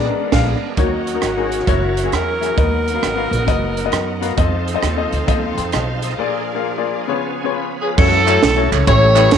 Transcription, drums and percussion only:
0.32 kick, snare, crash
0.77 kick, closed hi-hat
1.07 closed hi-hat
1.22 cross-stick, closed hi-hat
1.52 closed hi-hat
1.60 cross-stick
1.67 kick, closed hi-hat
1.97 closed hi-hat
2.12 cross-stick, closed hi-hat
2.43 closed hi-hat
2.58 kick, closed hi-hat
2.88 closed hi-hat
3.03 cross-stick, closed hi-hat
3.33 closed hi-hat
3.48 kick, closed hi-hat
3.77 closed hi-hat
3.92 cross-stick, closed hi-hat
4.23 closed hi-hat
4.30 cross-stick
4.37 kick, closed hi-hat
4.68 closed hi-hat
4.83 cross-stick, closed hi-hat
5.13 closed hi-hat
5.28 kick, closed hi-hat
5.58 closed hi-hat
5.72 cross-stick, closed hi-hat
6.02 closed hi-hat
6.10 cross-stick
7.98 kick, crash
8.28 clap, ride bell
8.43 snare, ride bell
8.72 clap, ride bell
8.87 kick, ride bell
9.16 clap, ride bell
9.31 snare, ride bell

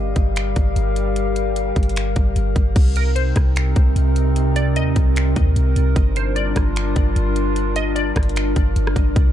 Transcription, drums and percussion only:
0.16 kick, closed hi-hat
0.36 finger snap, closed hi-hat
0.56 kick, closed hi-hat
0.76 closed hi-hat
0.96 closed hi-hat
1.16 closed hi-hat
1.36 closed hi-hat
1.56 closed hi-hat
1.76 kick, closed hi-hat
1.83 closed hi-hat
1.89 closed hi-hat
1.96 finger snap, closed hi-hat
2.16 kick, closed hi-hat
2.36 closed hi-hat
2.56 kick, closed hi-hat
2.76 kick, closed hi-hat, crash
2.96 closed hi-hat
3.16 closed hi-hat
3.36 kick, cross-stick, closed hi-hat
3.56 finger snap, closed hi-hat
3.76 kick, closed hi-hat
3.96 closed hi-hat
4.16 closed hi-hat
4.36 closed hi-hat
4.56 closed hi-hat
4.76 closed hi-hat
4.96 kick, closed hi-hat
5.16 finger snap, closed hi-hat
5.36 kick, closed hi-hat
5.56 closed hi-hat
5.76 closed hi-hat
5.96 kick, closed hi-hat
6.16 closed hi-hat
6.36 closed hi-hat
6.56 kick, cross-stick, closed hi-hat
6.76 finger snap, closed hi-hat
6.96 kick, closed hi-hat
7.16 closed hi-hat
7.36 closed hi-hat
7.56 closed hi-hat
7.76 closed hi-hat
7.96 closed hi-hat
8.16 kick, cross-stick, closed hi-hat
8.23 closed hi-hat
8.29 closed hi-hat
8.36 finger snap, closed hi-hat
8.56 kick, closed hi-hat
8.76 closed hi-hat
8.87 cross-stick
8.96 kick, closed hi-hat
9.16 kick, closed hi-hat

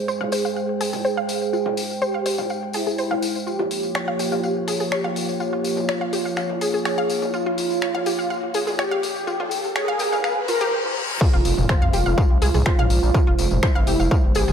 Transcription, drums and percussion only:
0.08 tambourine
0.21 mid tom
0.32 open hi-hat, tambourine
0.46 tambourine
0.56 tambourine
0.81 open hi-hat, tambourine
0.93 mid tom, open hi-hat, tambourine
1.05 tambourine
1.29 open hi-hat, tambourine
1.42 tambourine
1.53 tambourine
1.66 mid tom
1.77 open hi-hat, tambourine
1.90 tambourine
2.02 tambourine
2.26 open hi-hat, tambourine
2.38 mid tom, tambourine
2.50 tambourine
2.73 open hi-hat, tambourine
2.86 tambourine
2.98 open hi-hat, tambourine
3.11 mid tom
3.22 open hi-hat, tambourine
3.35 tambourine
3.47 tambourine
3.59 mid tom
3.71 open hi-hat, tambourine
3.83 tambourine
3.95 finger snap, tambourine
4.19 open hi-hat, tambourine
4.32 mid tom, tambourine
4.43 tambourine
4.68 open hi-hat, tambourine
4.80 open hi-hat, tambourine
4.92 finger snap, tambourine
5.04 mid tom
5.16 open hi-hat, tambourine
5.29 tambourine
5.40 tambourine
5.64 open hi-hat, tambourine
5.77 mid tom, tambourine
5.89 finger snap, tambourine
6.13 open hi-hat, tambourine
6.26 tambourine
6.36 finger snap, tambourine
6.50 mid tom
6.61 open hi-hat, tambourine
6.74 tambourine
6.85 finger snap, open hi-hat, tambourine
7.10 open hi-hat, tambourine
7.22 mid tom, tambourine
7.34 tambourine
7.58 open hi-hat, tambourine
7.70 tambourine
7.81 finger snap, tambourine
7.95 mid tom
8.06 open hi-hat, tambourine
8.20 tambourine
8.30 tambourine
8.54 open hi-hat, tambourine
8.67 mid tom, open hi-hat, tambourine
8.79 finger snap, tambourine
9.03 open hi-hat, tambourine
9.16 tambourine
9.28 tambourine
9.40 mid tom
9.51 open hi-hat, tambourine
9.64 tambourine
9.76 finger snap, tambourine
9.99 open hi-hat, tambourine
10.12 mid tom, tambourine
10.24 finger snap, tambourine
10.48 open hi-hat, tambourine
10.61 tambourine
11.21 kick, tambourine, crash
11.45 open hi-hat, tambourine
11.58 mid tom, tambourine
11.69 finger snap, kick, tambourine
11.93 open hi-hat, tambourine
12.06 tambourine
12.18 kick, tambourine
12.42 open hi-hat, tambourine
12.54 mid tom, open hi-hat, tambourine
12.66 finger snap, kick
12.78 mid tom
12.90 open hi-hat, tambourine
13.03 tambourine
13.14 kick, tambourine
13.39 open hi-hat, tambourine
13.51 mid tom, tambourine
13.63 finger snap, kick, tambourine
13.87 open hi-hat, tambourine
14.00 tambourine
14.11 kick, tambourine
14.35 open hi-hat, tambourine
14.48 mid tom, tambourine

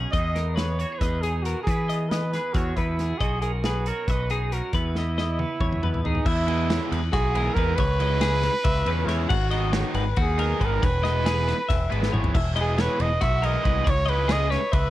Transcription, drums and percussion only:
0.13 kick, closed hi-hat
0.36 snare, closed hi-hat
0.57 snare, closed hi-hat
0.79 closed hi-hat
1.01 kick, snare, closed hi-hat
1.23 closed hi-hat
1.45 closed hi-hat
1.67 kick, closed hi-hat
1.90 closed hi-hat
2.11 snare, closed hi-hat
2.33 snare, closed hi-hat
2.54 kick, closed hi-hat
2.77 kick, closed hi-hat
2.99 snare, closed hi-hat
3.21 kick, closed hi-hat
3.42 closed hi-hat
3.64 snare, closed hi-hat
3.86 closed hi-hat
4.08 kick, closed hi-hat
4.30 closed hi-hat
4.52 closed hi-hat
4.73 kick, closed hi-hat
4.95 snare
5.18 snare
5.39 high tom
5.61 kick, mid tom
5.73 mid tom
5.83 mid tom
5.94 floor tom
6.05 floor tom
6.15 floor tom
6.26 kick, crash
6.48 ride
6.70 snare, ride
6.92 ride
7.13 kick, snare, ride
7.35 ride
7.57 kick, ride
7.78 kick, ride
8.00 ride
8.21 snare, ride
8.43 snare, ride
8.64 kick, ride
8.86 ride
9.09 snare, ride
9.30 kick, crash
9.51 ride
9.73 snare, ride
9.94 ride
10.16 kick, ride
10.39 ride
10.61 kick, ride
10.83 kick, ride
11.05 snare, ride
11.26 snare, ride
11.48 snare, ride
11.70 kick, snare, ride
11.92 ride
12.03 snare
12.14 mid tom
12.24 floor tom
12.35 kick, crash
12.56 ride
12.78 snare, ride
13.00 ride
13.21 kick, snare, ride
13.43 ride
13.65 kick, ride
13.87 kick, ride
14.08 ride
14.29 snare, ride
14.52 snare, ride
14.73 kick, ride

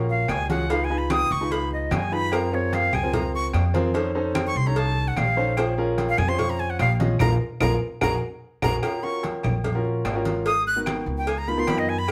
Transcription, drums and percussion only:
0.09 high conga
0.28 cowbell, high conga, low timbale, low agogo, claves
0.50 cowbell, high conga
0.69 cowbell, high conga, low agogo
0.90 high conga
1.10 cowbell, high conga, low timbale, low agogo, claves
1.31 high conga
1.50 cowbell, high conga, low agogo
1.71 high conga
1.91 cowbell, high conga, low timbale, low agogo, claves
2.12 high conga
2.32 cowbell, high conga, low agogo, claves
2.52 high conga
2.73 cowbell, high conga, low timbale, low agogo
2.93 high conga, low conga, low agogo, claves
3.13 cowbell, high conga, low conga, low agogo
3.34 high conga
3.53 cowbell, high conga, low timbale, low agogo, claves
3.75 cowbell, high conga
3.94 cowbell, high conga, low agogo
4.15 high conga
4.35 cowbell, high conga, low timbale, low agogo, claves
4.56 high conga
4.76 cowbell, high conga, low agogo
4.96 high conga
5.16 cowbell, high conga, low timbale, low agogo, claves
5.37 high conga
5.57 cowbell, high conga, low agogo, claves
5.78 high conga
5.98 cowbell, high conga, low timbale, low agogo
6.18 high conga, low conga, low agogo, claves
6.38 cowbell, high conga, low conga, low agogo
6.59 high conga
6.79 cowbell, high conga, low timbale, low agogo, claves
7.00 cowbell, high conga
7.19 cowbell, low conga, high timbale, claves
7.60 cowbell, low conga, high timbale, claves
8.01 cowbell, low conga, high timbale, claves
8.62 cowbell, low conga, high timbale, claves
8.83 cowbell, high conga, low agogo, claves
9.04 high conga
9.23 cowbell, high conga, low timbale, low agogo
9.43 high conga, low conga, low agogo, claves
9.64 cowbell, high conga, low conga, low agogo
9.85 high conga
10.05 cowbell, high conga, low timbale, low agogo, claves
10.25 cowbell, high conga
10.46 cowbell, high conga, low agogo
10.66 high conga
10.86 cowbell, high conga, low timbale, low agogo, claves
11.07 high conga
11.27 cowbell, high conga, low agogo
11.48 high conga
11.67 cowbell, high conga, low timbale, low agogo, claves
11.88 high conga
12.08 cowbell, low agogo, claves

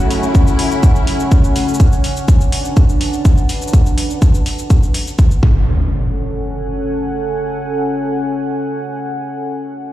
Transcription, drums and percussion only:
0.11 open hi-hat, shaker
0.23 shaker
0.35 kick, shaker
0.47 shaker
0.59 open hi-hat
0.71 shaker
0.83 kick, shaker
0.96 shaker
1.07 open hi-hat
1.20 shaker
1.32 kick, shaker
1.44 shaker
1.56 open hi-hat, shaker
1.68 shaker
1.74 shaker
1.80 kick, shaker
1.92 shaker
2.04 open hi-hat, shaker
2.17 shaker
2.28 kick, shaker
2.41 shaker
2.52 open hi-hat
2.65 shaker
2.77 kick, shaker
2.89 shaker
3.01 open hi-hat
3.13 shaker
3.25 kick, shaker
3.38 shaker
3.49 open hi-hat, shaker
3.62 shaker
3.68 shaker
3.73 kick, shaker
3.86 shaker
3.98 open hi-hat, shaker
4.10 shaker
4.22 kick, shaker
4.34 shaker
4.46 open hi-hat, shaker
4.59 shaker
4.70 kick, shaker
4.83 shaker
4.94 open hi-hat, shaker
5.07 shaker
5.19 kick, shaker
5.31 shaker
5.43 kick

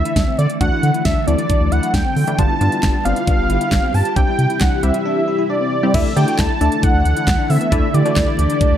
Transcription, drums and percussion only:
0.05 closed hi-hat
0.16 kick, snare, closed hi-hat
0.39 closed hi-hat
0.50 closed hi-hat
0.61 kick, closed hi-hat
0.83 closed hi-hat
0.94 closed hi-hat
1.05 kick, snare, closed hi-hat
1.28 closed hi-hat
1.38 closed hi-hat
1.50 kick, closed hi-hat
1.72 closed hi-hat
1.83 closed hi-hat
1.94 kick, snare, closed hi-hat
2.16 open hi-hat
2.27 closed hi-hat
2.39 kick, closed hi-hat
2.61 closed hi-hat
2.72 closed hi-hat
2.83 kick, snare, clap, closed hi-hat
3.05 closed hi-hat
3.16 closed hi-hat
3.27 kick, closed hi-hat
3.50 closed hi-hat
3.61 closed hi-hat
3.72 kick, snare, clap, closed hi-hat
3.94 open hi-hat
4.05 closed hi-hat
4.16 kick, closed hi-hat
4.39 closed hi-hat
4.50 closed hi-hat
4.61 kick, snare, clap, closed hi-hat
4.83 closed hi-hat
4.94 closed hi-hat
5.94 kick, closed hi-hat, crash
6.17 closed hi-hat
6.28 closed hi-hat
6.39 kick, snare, clap, closed hi-hat
6.61 closed hi-hat
6.72 closed hi-hat
6.83 kick, closed hi-hat
7.05 closed hi-hat
7.17 closed hi-hat
7.27 kick, snare, clap, closed hi-hat
7.50 open hi-hat
7.61 closed hi-hat
7.72 kick, closed hi-hat
7.94 closed hi-hat
8.06 closed hi-hat
8.16 kick, snare, clap, closed hi-hat
8.39 closed hi-hat
8.50 closed hi-hat
8.61 kick, closed hi-hat

